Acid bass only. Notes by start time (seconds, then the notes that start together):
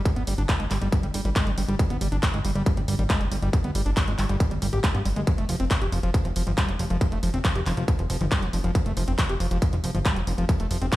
0.05 G3
0.16 B3
0.27 G3
0.38 D4
0.49 G3
0.60 G#3
0.71 G3
0.82 G3
0.92 G3
1.03 G3
1.14 G3
1.25 G3
1.36 G#3
1.47 G3
1.58 G3
1.69 G3
1.79 G3
1.90 B3
2.01 G3
2.12 D4
2.23 G3
2.34 G#3
2.45 G3
2.56 G3
2.66 G3
2.77 G3
2.88 G3
2.99 G3
3.10 G#3
3.21 G3
3.32 G3
3.42 G3
3.53 G3
3.64 B3
3.75 G3
3.86 D4
3.97 G3
4.08 G#3
4.19 G3
4.29 G3
4.40 G3
4.51 G3
4.62 G3
4.73 G4
4.84 G#3
4.95 B3
5.05 G3
5.16 G#3
5.27 F3
5.38 A3
5.49 F3
5.60 C4
5.71 F3
5.82 G4
5.92 F3
6.03 F3
6.14 F3
6.25 F3
6.36 F3
6.47 F3
6.58 G3
6.69 F3
6.79 F3
6.90 F3
7.01 F3
7.12 A3
7.23 F3
7.34 C4
7.45 F3
7.56 G4
7.66 F3
7.77 F3
7.88 F3
7.99 F3
8.10 F3
8.21 F3
8.32 G3
8.42 F3
8.53 F3
8.64 F3
8.75 F3
8.86 A3
8.97 F3
9.08 C4
9.19 F3
9.29 G4
9.40 F3
9.51 F3
9.62 F3
9.73 F3
9.84 F3
9.95 F3
10.05 G3
10.16 F3
10.27 F3
10.38 F3
10.49 F3
10.60 A3
10.71 F3
10.82 C4
10.92 F3